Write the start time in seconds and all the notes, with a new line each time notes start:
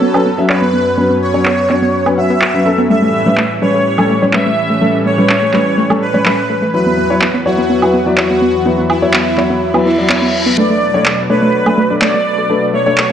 Already playing: F#2 F#3 B3 C#4 A4 B4 C#5
0.02 B3
0.14 F#3 C#4 B4, high woodblock
0.26 B3
0.38 F#3 B3 C#4 E5
0.50 F#3 C#4 B4 C#5, clap
0.62 B3
0.74 B3
0.98 F#3 B3 C#4 B4
1.10 B3
1.22 C#5
1.34 F#3 B3 C#4 C#5
1.46 B3, clap
1.70 F#3 B3 C#4 C#5, clap
1.82 B3
2.06 F#3 B3 C#4 B4, high woodblock
2.18 F#3 C#4 E5 F#5
2.30 B3
2.42 F#4, clap
2.54 F#3 C#4 B4
2.66 F#3 C#4 A4 B4
2.78 B3
2.90 A2 E3 G3 A3 C#4 A4 B4 E5
3.02 A3
3.26 G3 A3 C#4 B4
3.38 A3, clap
3.62 G3 A3 C#4 B4 C#5
3.74 A3
3.98 G3 A3 C#4 A4, high woodblock
4.10 A3
4.22 G3 C#4 C#5
4.33 G3 A3 C#4 B4 E5, clap
4.46 A3
4.70 A3
4.82 G3 A3 C#4 A4
5.06 A3 C#5
5.18 G3 A3 C#4 B4
5.29 clap
5.42 A3
5.54 G3 A3 C#4 B4, clap
5.78 A3
5.90 G3 A3 C#4 A4, high woodblock
6.02 B4
6.14 G3 A3 C#4 C#5
6.26 G3 A3 C#4 B4, clap
6.50 A3
6.62 A3
6.74 E2 E3 F#3 B3 E4 B4
6.86 B3
6.98 B3
7.10 F#3 E4 C#5
7.22 B3, clap
7.34 B3
7.46 F#3 E4 F#4 C#5
7.58 B3
7.70 B3
7.82 F#3 E4 B4, high woodblock
7.94 B3
8.06 F#3 B3 E4 D5
8.18 F#3 E4 F#4 C#5, clap
8.30 B3
8.42 B3
8.66 F#3 B3 E4 B4
8.78 B3
8.90 E4, high woodblock
9.02 F#3 B3 E4 C#5
9.14 B3, clap
9.38 F#3 B3 E4 C#5, clap
9.50 B3
9.62 reverse cymbal
9.74 F#3 B3 E4 B4, high woodblock
9.86 B3 E4
9.98 F#3 E4 D5
10.10 F#3 B3 E4 C#5, clap
10.22 B3
10.46 B3
10.58 B2 A3 D4 B4 D5
10.70 A3
10.94 A3 D4 C#5
11.06 A3, clap
11.30 A3 D4 B4 C#5
11.42 A3
11.66 A3 D4 B4, high woodblock
11.78 A3
11.90 A3 D4 D5
12.02 A3 D4 C#5 D5, clap
12.14 A3
12.38 A3
12.50 A3 D4 B4
12.74 A3 C#5
12.86 A3 D4 C#5
12.98 clap